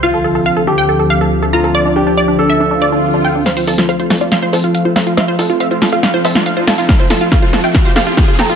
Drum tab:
HH |----------------|----------------|xooxxxoxx-oxx-ox|x-oxxxoxx-oxx-oo|
SD |----------------|----------------|o--o--o-o-----o-|o-----o-o--o--o-|
BD |----------------|----------------|----------------|----------------|

HH |xooxxxoxx-oxx-ox|
SD |o-o-o-o-o-o-o-o-|
BD |o---o---o---o---|